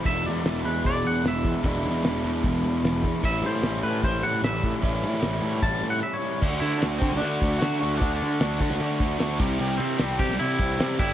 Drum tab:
CC |----------------|----------------|----------------|----------------|
HH |o---o---o---o---|o---o---o---o---|o---o---o---o---|o---o---o-------|
SD |----o-------o---|----o-------o---|---oo-------o---|---oo-----------|
BD |o-------o-----o-|o-------o-----o-|o-------o-----o-|o-------o-------|

CC |x-x-x-x-x-x-x-x-|x-x-x-x-x-x-x-x-|x-x-x-x-x-x-x-x-|
HH |----------------|----------------|----------------|
SD |----o-------o---|----o-------o---|----o-------o---|
BD |o-----o---o-----|o-----o---o---o-|------o---o---o-|